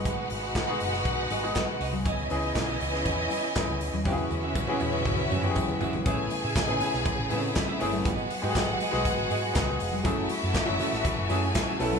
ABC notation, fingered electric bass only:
X:1
M:4/4
L:1/16
Q:1/4=120
K:F#dor
V:1 name="Fingered electric bass" clef=bass
G,,,2 G,,,2 z2 F,,,2 B,,,2 G,,,2 z2 ^B,,,2 | C,,2 C,,2 B,,,2 C,,2 E,,2 z3 C,, =D,, ^D,, | E,,2 E,,2 z2 E,,2 C,,2 F,,2 z2 G,,,2 | A,,,2 z A,, z A,,, z B,,, z A,,, A,,2 z2 =G,,,2 |
G,,,2 z G,, z G,,, z B,,, z G,,, G,,2 C,,2 ^E,,,2 | F,,,2 z F,, z F,,, z A,,, z F,,, F,,2 z2 B,,,2 |]